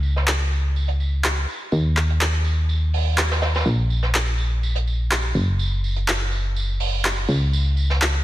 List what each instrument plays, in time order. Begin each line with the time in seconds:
Already playing: fm bass C#2
0.03 tambourine
0.16 snare
0.27 clap, tambourine
0.52 tambourine
0.76 tambourine
0.88 closed hi-hat
1.00 tambourine
1.24 clap, tambourine
1.48 tambourine
1.72 fm bass D#2, tambourine
1.96 clap, tambourine
2.10 closed hi-hat
2.21 clap, tambourine
2.44 tambourine
2.69 tambourine
2.94 open hi-hat
3.18 snare, clap, tambourine
3.31 snare, tambourine
3.42 snare, tambourine
3.55 snare, tambourine
3.66 fm bass A#1, tambourine
3.90 tambourine
4.03 snare
4.14 clap, tambourine
4.38 tambourine
4.63 tambourine
4.75 closed hi-hat
4.87 tambourine
5.11 clap, tambourine
5.35 fm bass F#1, tambourine
5.59 tambourine
5.84 tambourine
5.96 closed hi-hat
6.07 clap, tambourine
6.32 tambourine
6.56 tambourine
6.80 open hi-hat
7.05 clap, tambourine
7.28 fm bass C#2, tambourine
7.53 tambourine
7.77 tambourine
7.90 snare
8.02 clap, tambourine